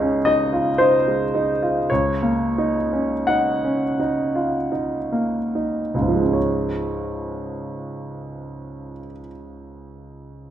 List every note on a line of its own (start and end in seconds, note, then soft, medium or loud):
0.00 1.85 C#2 soft
0.00 1.07 G#3 soft
0.00 0.02 C#4 soft
0.00 0.27 C#4 soft
0.00 0.27 D#4 soft
0.00 0.27 F5 medium
0.25 0.68 D#4 soft
0.25 0.78 D#5 medium
0.53 0.95 F4 soft
0.78 1.22 D#4 soft
0.78 1.89 C5 medium
1.07 1.50 G#3 soft
1.35 1.78 D#4 soft
1.62 1.90 F4 soft
1.90 5.93 C#2 soft
1.90 3.26 C#5 soft
2.22 2.77 A#3 soft
2.58 3.13 D#4 soft
2.93 3.27 C#4 soft
3.27 3.84 D#4 soft
3.27 4.71 F#5 medium
3.65 3.98 C#4 soft
4.00 4.57 D#4 soft
4.35 4.96 F4 soft
4.72 5.37 D#4 soft
5.12 5.81 A#3 soft
5.55 6.21 D#4 soft
5.94 8.91 C#2 soft
5.94 6.36 F4 soft
6.01 8.98 G#2 soft
6.08 9.05 F3 soft
6.15 9.12 G#3 soft
6.22 9.18 C#4 soft
6.28 9.25 D#4 soft
6.33 9.30 C#5 soft